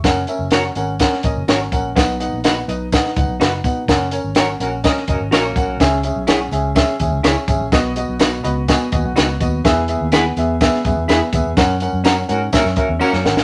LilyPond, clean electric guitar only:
\new Staff \with { instrumentName = "Clean electric guitar" } { \time 4/4 \key b \major \tempo 4 = 125 r4 <fis' ais' cis''>8 r4. <fis' ais' cis''>8 r8 | r4 <dis' fis' b'>8 r4. <dis' fis' b'>8 r8 | r4 <fis' ais' cis''>8 r4. <fis' ais' cis''>8 r8 | r4 <e' gis' cis''>8 r4. <e' gis' cis''>8 r8 |
r4 <dis' fis' b'>8 r4. <dis' fis' b'>8 r8 | r4 <e' gis' b'>8 r4. <e' gis' b'>8 r8 | r4 <cis' fis' ais'>8 r4. <cis' fis' ais'>8 r8 | }